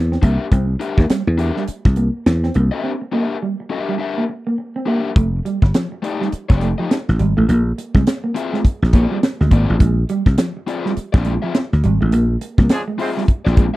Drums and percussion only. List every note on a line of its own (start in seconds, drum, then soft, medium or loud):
0.12 snare soft
0.23 kick medium
0.23 closed hi-hat medium
0.51 kick loud
0.51 closed hi-hat medium
0.81 closed hi-hat medium
0.98 kick medium
0.98 snare soft
1.09 snare loud
1.09 closed hi-hat loud
1.39 closed hi-hat medium
1.56 snare soft
1.67 closed hi-hat medium
1.85 kick loud
1.85 snare soft
1.96 closed hi-hat medium
2.26 snare loud
2.26 closed hi-hat medium
2.43 snare soft
2.54 closed hi-hat medium
5.16 kick loud
5.16 closed hi-hat medium
5.46 closed hi-hat medium
5.62 kick medium
5.62 snare soft
5.74 snare loud
5.74 closed hi-hat loud
6.04 closed hi-hat medium
6.22 snare soft
6.32 closed hi-hat medium
6.50 kick medium
6.50 snare soft
6.61 closed hi-hat medium
6.91 snare loud
6.91 closed hi-hat medium
7.08 snare soft
7.19 closed hi-hat medium
7.49 closed hi-hat medium
7.78 closed hi-hat medium
7.95 kick medium
7.95 snare soft
8.07 snare loud
8.07 closed hi-hat loud
8.36 closed hi-hat medium
8.54 snare soft
8.65 kick medium
8.65 closed hi-hat medium
8.83 snare soft
8.93 kick loud
8.93 closed hi-hat medium
9.23 snare loud
9.23 closed hi-hat medium
9.41 snare soft
9.51 kick medium
9.51 closed hi-hat medium
9.80 kick loud
9.80 closed hi-hat loud
10.09 closed hi-hat medium
10.26 kick medium
10.26 snare soft
10.37 snare loud
10.37 closed hi-hat loud
10.68 closed hi-hat medium
10.86 snare soft
10.97 closed hi-hat medium
11.14 kick loud
11.14 snare soft
11.25 closed hi-hat medium
11.54 snare loud
11.54 closed hi-hat medium
11.72 snare soft
11.83 closed hi-hat medium
12.12 closed hi-hat loud
12.41 closed hi-hat medium
12.58 kick medium
12.58 snare soft
12.69 snare loud
12.69 closed hi-hat loud
12.99 open hi-hat medium
13.18 snare soft
13.28 kick medium
13.28 closed hi-hat medium
13.46 snare soft
13.57 kick loud
13.57 closed hi-hat medium